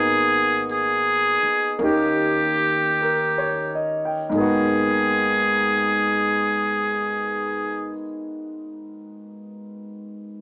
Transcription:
0.00 1.38 G#1 medium
0.00 1.77 A#3 soft
0.00 1.80 B3 soft
0.00 1.81 D#4 soft
0.00 1.82 F#4 medium
0.00 0.66 G#4 medium
0.72 1.78 G#4 medium
1.43 muted upright bass stroke soft
1.79 4.28 D#2 medium
1.79 4.32 A#3 soft
1.79 4.33 C#4 soft
1.79 4.34 D#4 soft
1.84 4.34 G4 medium
1.84 3.88 G4 medium
3.02 3.63 A#4 soft
3.38 3.93 C#5 soft
3.75 4.12 D#5 soft
4.05 4.50 G5 soft
4.29 7.90 G#1 medium
4.29 7.92 G#2 medium
4.29 7.94 G#3 soft
4.35 7.97 A#3 soft
4.35 8.00 B3 soft
4.35 7.96 G#4 medium
4.41 8.03 F#4 medium

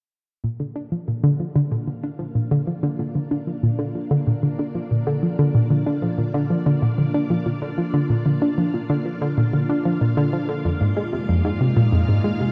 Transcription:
0.44 0.49 A#2 medium
0.44 12.34 A#3 medium
0.60 0.72 D3 medium
0.76 0.84 D4 medium
0.92 1.04 F3 medium
0.92 10.65 D4 medium
1.08 1.20 A#2 medium
1.24 1.32 D3 medium
1.28 12.52 F4 medium
1.40 1.52 F3 medium
1.56 1.60 D3 medium
1.56 12.52 F5 medium
1.72 1.76 A#2 medium
1.88 2.00 D3 medium
2.03 2.11 D4 medium
2.19 2.31 F3 medium
2.35 2.47 A#2 medium
2.48 2.59 D3 medium
2.48 12.16 D5 medium
2.67 2.79 F3 medium
2.83 2.88 D3 medium
2.99 3.04 A#2 medium
3.15 3.27 D3 medium
3.31 3.39 D4 medium
3.47 3.59 F3 medium
3.63 3.75 A#2 medium
3.79 3.87 D3 medium
3.95 4.07 F3 medium
4.11 4.16 D3 medium
4.27 4.32 A#2 medium
4.43 4.55 D3 medium
4.59 4.67 D4 medium
4.75 4.87 F3 medium
4.91 5.03 A#2 medium
5.07 5.15 D3 medium
5.23 5.35 F3 medium
5.39 5.44 D3 medium
5.55 5.59 A#2 medium
5.70 5.82 D3 medium
5.86 5.94 D4 medium
6.02 6.14 F3 medium
6.18 6.30 A#2 medium
6.34 6.42 D3 medium
6.50 6.62 F3 medium
6.66 6.71 D3 medium
6.82 6.87 A#2 medium
6.98 7.10 D3 medium
7.14 7.22 D4 medium
7.30 7.42 F3 medium
7.46 7.58 A#2 medium
7.62 7.70 D3 medium
7.78 7.90 F3 medium
7.94 7.99 D3 medium
8.10 8.15 A#2 medium
8.26 8.38 D3 medium
8.42 8.50 D4 medium
8.58 8.70 F3 medium
8.74 8.86 A#2 medium
8.90 8.98 D3 medium
9.06 9.18 F3 medium
9.22 9.26 D3 medium
9.38 9.42 A#2 medium
9.53 9.65 D3 medium
9.69 9.77 D4 medium
9.85 9.97 F3 medium
10.01 10.13 A#2 medium
10.17 10.25 D3 medium
10.33 10.45 F3 medium
10.49 10.54 D3 medium
10.65 10.70 F2 medium
10.65 12.52 G#3 medium
10.81 10.93 G#2 medium
10.97 11.05 G#3 medium
11.05 12.52 D#4 medium
11.13 11.25 C3 medium
11.29 11.41 F2 medium
11.45 11.53 G#2 medium
11.61 11.73 C3 medium
11.77 11.82 A#2 medium
11.92 11.97 F2 medium
12.09 12.21 G#2 medium
12.24 12.32 G#3 medium
12.40 12.52 C3 medium
12.40 12.52 C5 medium

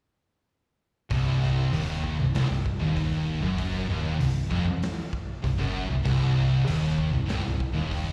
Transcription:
1.10 1.69 C1 medium
1.10 1.71 C2 loud
1.10 kick loud
1.10 open hi-hat medium
1.43 snare soft
1.72 2.15 D#1 medium
1.72 2.18 D#2 loud
1.72 open hi-hat medium
2.04 kick medium
2.19 2.33 C1 medium
2.19 2.33 C2 medium
2.34 2.49 C1 loud
2.34 2.49 C2 loud
2.34 snare loud
2.34 open hi-hat medium
2.49 2.78 C1 medium
2.49 2.74 C2 medium
2.66 kick medium
2.79 3.38 D#1 medium
2.79 3.41 D#2 loud
2.97 kick medium
2.97 open hi-hat medium
3.42 3.85 F#1 loud
3.42 3.87 F#2 loud
3.58 kick loud
3.58 open hi-hat medium
3.89 4.17 D#1 medium
3.89 4.19 D#2 loud
4.19 4.48 C1 medium
4.19 4.44 C2 medium
4.19 open hi-hat medium
4.50 4.65 F1 medium
4.50 4.65 F2 loud
4.50 kick medium
4.82 snare loud
4.82 open hi-hat medium
5.13 kick loud
5.44 5.58 C1 medium
5.44 5.59 C2 medium
5.44 kick medium
5.44 open hi-hat medium
5.59 5.88 F#1 medium
5.59 5.89 F#2 loud
5.89 6.04 C1 medium
5.89 6.04 C2 medium
6.05 6.64 C1 medium
6.05 6.66 C2 loud
6.05 kick loud
6.05 open hi-hat medium
6.67 7.11 D#1 loud
6.67 7.12 D#2 loud
6.67 open hi-hat medium
6.98 kick medium
7.13 7.28 C1 medium
7.13 7.28 C2 medium
7.29 7.44 C1 loud
7.29 7.43 C2 loud
7.29 snare loud
7.29 open hi-hat medium
7.45 7.74 C1 medium
7.45 7.70 C2 medium
7.60 kick medium
7.76 8.12 D#1 loud
7.76 8.12 D#2 loud
7.91 kick medium
7.91 open hi-hat medium

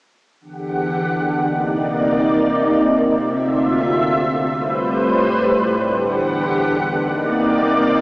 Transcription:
0.41 1.43 E2 medium
0.41 1.43 D3 medium
0.41 1.43 G4 medium
0.41 1.43 F#5 medium
1.44 4.51 C3 medium
1.44 3.15 A#3 medium
1.44 3.15 D#4 medium
1.44 3.15 D5 medium
3.16 4.53 D2 medium
3.16 4.53 F4 medium
3.16 4.53 E5 medium
4.54 5.91 A2 medium
4.54 5.91 G3 medium
4.54 5.91 B4 medium
4.54 5.91 C5 medium
5.92 6.95 E2 medium
5.92 6.95 D3 medium
5.92 6.95 G4 medium
5.92 6.95 F#5 medium
6.96 8.01 C3 medium
6.96 8.01 A#3 medium
6.96 8.01 D#4 medium
6.96 8.01 D5 medium

